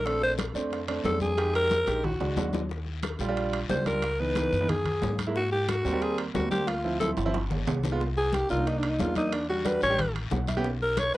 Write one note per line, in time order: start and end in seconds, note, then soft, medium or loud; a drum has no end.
0.00 0.49 A#1 medium
0.05 0.40 A3 medium
0.05 0.41 C4 medium
0.05 0.40 D4 medium
0.05 0.22 A4 medium
0.05 high bongo medium
0.05 high conga soft
0.05 high timbale medium
0.05 long guiro medium
0.22 0.33 C5 loud
0.22 high bongo soft
0.22 high conga soft
0.38 high bongo medium
0.38 high conga medium
0.38 high timbale medium
0.38 low timbale medium
0.38 short guiro medium
0.54 1.01 F2 medium
0.54 0.78 A3 medium
0.54 0.78 C4 medium
0.54 0.78 D4 loud
0.54 high bongo soft
0.54 high conga soft
0.54 short guiro medium
0.71 high bongo medium
0.71 high conga soft
0.71 high timbale medium
0.71 long guiro medium
0.88 1.00 A3 medium
0.88 1.00 C4 medium
0.88 1.00 D4 medium
0.88 high conga soft
0.88 high timbale loud
1.04 1.81 F2 loud
1.04 1.28 A3 medium
1.04 1.28 C4 medium
1.04 1.28 D4 medium
1.04 1.20 A4 medium
1.04 high bongo soft
1.04 low bongo medium
1.04 high conga medium
1.04 low timbale loud
1.04 short guiro medium
1.20 1.52 G#4 medium
1.20 high bongo soft
1.20 high conga medium
1.20 short guiro medium
1.37 1.72 G#3 medium
1.37 1.72 D#4 medium
1.37 1.72 G4 medium
1.37 high bongo medium
1.37 high conga soft
1.37 high timbale medium
1.37 long guiro medium
1.55 2.06 A#4 loud
1.55 high bongo soft
1.55 high conga soft
1.55 high timbale medium
1.70 high bongo medium
1.70 high conga loud
1.70 low timbale medium
1.70 short guiro medium
1.87 2.18 A#1 medium
1.87 2.04 G#3 medium
1.87 2.04 D#4 medium
1.87 2.04 G4 medium
1.87 high bongo medium
1.87 high conga soft
1.87 high timbale medium
1.87 short guiro medium
2.04 2.54 F#4 medium
2.04 high conga soft
2.04 low conga medium
2.04 high timbale medium
2.04 long guiro medium
2.20 2.36 C#2 medium
2.20 2.32 G#3 medium
2.20 2.32 D4 medium
2.20 2.32 F#4 medium
2.20 low bongo medium
2.20 high conga soft
2.20 high timbale medium
2.37 3.14 D#2 medium
2.37 2.60 G#3 medium
2.37 2.60 D4 medium
2.37 2.61 F#4 medium
2.37 low bongo loud
2.37 high conga medium
2.37 low timbale medium
2.37 short guiro medium
2.53 low bongo loud
2.53 high conga medium
2.53 low timbale medium
2.53 short guiro medium
2.69 high bongo medium
2.69 long guiro medium
2.86 high conga soft
3.02 high bongo medium
3.02 high conga medium
3.02 high timbale loud
3.02 short guiro medium
3.19 3.66 A#1 medium
3.19 3.26 G3 medium
3.19 3.26 D4 medium
3.19 3.26 F4 medium
3.19 high bongo soft
3.19 high conga soft
3.19 short guiro medium
3.28 3.57 G3 medium
3.28 3.57 D4 medium
3.28 3.57 F4 loud
3.36 high bongo medium
3.36 high conga soft
3.36 high timbale medium
3.36 long guiro medium
3.53 high bongo soft
3.53 high conga soft
3.53 high timbale medium
3.69 4.47 C#2 medium
3.69 3.81 G3 medium
3.69 3.81 D4 medium
3.69 3.81 F4 medium
3.69 3.85 C5 medium
3.69 high bongo medium
3.69 low bongo medium
3.69 high conga medium
3.69 low timbale medium
3.69 short guiro medium
3.86 4.03 G3 medium
3.86 4.03 D4 medium
3.86 4.03 F4 medium
3.86 4.22 A#4 medium
3.86 high bongo soft
3.86 high conga medium
3.86 high timbale medium
3.86 short guiro medium
4.02 high bongo medium
4.02 high conga soft
4.02 high timbale medium
4.02 long guiro medium
4.19 4.31 E3 medium
4.19 4.31 B3 medium
4.19 4.31 D#4 medium
4.19 4.71 B4 loud
4.19 high conga soft
4.35 4.53 E3 medium
4.35 4.53 B3 medium
4.35 4.53 D#4 medium
4.35 high bongo medium
4.35 high conga medium
4.35 high timbale medium
4.35 short guiro medium
4.52 4.99 F#2 medium
4.52 high bongo soft
4.52 high conga soft
4.52 short guiro medium
4.61 4.69 E3 medium
4.61 4.69 B3 medium
4.61 4.69 D#4 medium
4.69 5.19 G#4 medium
4.69 high bongo medium
4.69 high conga soft
4.69 low conga medium
4.69 high timbale medium
4.69 long guiro medium
4.85 high bongo soft
4.85 high conga soft
4.85 low conga medium
4.85 high timbale medium
5.02 5.79 G#2 loud
5.02 high bongo medium
5.02 low bongo medium
5.02 high conga medium
5.02 low timbale medium
5.02 short guiro medium
5.18 high bongo soft
5.18 high conga medium
5.18 high timbale medium
5.18 short guiro medium
5.27 5.35 G#3 medium
5.27 5.35 A#3 medium
5.27 5.35 E4 loud
5.35 5.51 F#4 medium
5.35 high bongo medium
5.35 high conga soft
5.35 long guiro medium
5.51 5.70 G4 loud
5.51 high conga soft
5.68 6.03 F#4 medium
5.68 high bongo medium
5.68 high conga medium
5.68 high timbale medium
5.68 short guiro medium
5.85 6.31 D#2 medium
5.85 5.91 G3 medium
5.85 5.91 A#3 medium
5.85 5.91 C4 medium
5.85 high bongo soft
5.85 high conga soft
5.85 short guiro medium
5.93 6.22 G3 medium
5.93 6.22 A#3 medium
5.93 6.22 C4 medium
6.02 6.18 G#4 medium
6.02 high bongo medium
6.02 high conga soft
6.02 high timbale medium
6.02 long guiro medium
6.18 high bongo soft
6.18 high conga soft
6.18 high timbale medium
6.34 7.12 D2 medium
6.34 6.46 G3 medium
6.34 6.46 A#3 medium
6.34 6.46 C4 medium
6.34 6.50 F#4 medium
6.34 high bongo medium
6.34 low bongo medium
6.34 high conga medium
6.34 low timbale medium
6.34 short guiro medium
6.51 6.68 G3 medium
6.51 6.68 A#3 medium
6.51 6.68 C4 medium
6.51 6.69 G4 loud
6.51 high bongo soft
6.51 high conga medium
6.51 high timbale medium
6.51 short guiro medium
6.67 7.00 F4 medium
6.67 high bongo medium
6.67 high conga soft
6.67 high timbale medium
6.67 long guiro medium
6.84 6.96 F3 medium
6.84 6.96 C4 medium
6.84 6.96 E4 medium
6.84 high conga soft
7.00 7.18 F3 medium
7.00 7.18 C4 medium
7.00 7.18 E4 medium
7.00 7.10 A4 loud
7.00 high bongo medium
7.00 high conga medium
7.00 high timbale medium
7.00 short guiro medium
7.17 7.63 G1 medium
7.17 high bongo soft
7.17 high timbale medium
7.17 short guiro medium
7.25 7.34 F3 loud
7.25 7.34 C4 medium
7.25 7.34 E4 loud
7.34 high bongo medium
7.34 high conga medium
7.34 high timbale medium
7.34 long guiro medium
7.50 high bongo medium
7.50 low conga medium
7.50 low timbale medium
7.67 8.44 C2 medium
7.67 low conga medium
7.67 low timbale loud
7.67 short guiro medium
7.83 low bongo medium
7.83 low conga loud
7.83 low timbale medium
7.83 short guiro medium
7.92 8.00 G#3 medium
7.92 8.00 B3 medium
7.92 8.00 F4 loud
8.00 high bongo medium
8.00 high conga soft
8.00 long guiro medium
8.17 8.36 G#4 loud
8.17 high conga soft
8.33 8.50 G4 loud
8.33 high bongo medium
8.33 high conga loud
8.33 high timbale medium
8.33 short guiro medium
8.49 8.96 C2 medium
8.49 8.55 A#3 medium
8.49 8.55 D4 medium
8.49 8.55 D#4 medium
8.49 8.69 F4 medium
8.49 high bongo soft
8.49 high conga soft
8.49 short guiro medium
8.58 8.87 A#3 medium
8.58 8.87 D4 medium
8.58 8.87 D#4 medium
8.66 8.80 D#4 medium
8.66 high bongo medium
8.66 high conga soft
8.66 high timbale medium
8.66 long guiro medium
8.78 8.91 D4 medium
8.83 high bongo soft
8.83 high conga soft
8.83 high timbale medium
8.90 9.01 D#4 medium
8.99 9.77 E2 medium
8.99 9.11 A#3 medium
8.99 9.11 D4 medium
8.99 9.11 D#4 medium
8.99 9.16 F4 loud
8.99 high bongo medium
8.99 low bongo medium
8.99 high conga medium
8.99 low timbale medium
8.99 short guiro medium
9.15 9.33 A#3 medium
9.15 9.33 D4 medium
9.15 9.33 D#4 medium
9.15 9.35 D#4 medium
9.15 high bongo soft
9.15 high conga medium
9.15 high timbale medium
9.15 short guiro medium
9.32 9.49 D4 medium
9.32 high bongo medium
9.32 high conga soft
9.32 high timbale loud
9.32 long guiro medium
9.49 9.61 G3 medium
9.49 9.61 D4 medium
9.49 9.61 F#4 medium
9.49 9.68 F#4 medium
9.49 high conga soft
9.65 9.82 G3 medium
9.65 9.82 D4 medium
9.65 9.83 F#4 medium
9.65 9.83 B4 medium
9.65 high bongo medium
9.65 high conga medium
9.65 high timbale medium
9.65 short guiro medium
9.81 10.28 A1 medium
9.81 10.13 C#5 loud
9.81 high bongo soft
9.81 high conga soft
9.81 short guiro medium
9.90 9.98 G3 medium
9.90 9.98 D4 medium
9.90 9.98 G4 loud
9.98 high bongo medium
9.98 high conga soft
9.98 low conga medium
9.98 high timbale medium
9.98 long guiro medium
10.15 high bongo soft
10.15 high conga soft
10.15 high timbale medium
10.30 11.08 B1 medium
10.30 10.47 F#5 medium
10.30 high bongo medium
10.30 low bongo medium
10.30 high conga medium
10.30 low timbale medium
10.30 short guiro medium
10.47 10.63 E5 medium
10.47 high bongo soft
10.47 high conga medium
10.47 high timbale medium
10.47 short guiro medium
10.57 10.65 B3 loud
10.57 10.65 C#4 medium
10.57 10.65 G4 loud
10.64 high bongo medium
10.64 long guiro medium
10.81 11.00 A#4 medium
10.81 high conga soft
10.97 11.14 C#5 loud
10.97 high bongo medium
10.97 high conga loud
10.97 high timbale medium
10.97 short guiro medium
11.14 11.17 A#3 medium
11.14 11.17 C#4 medium
11.14 high bongo soft
11.14 short guiro medium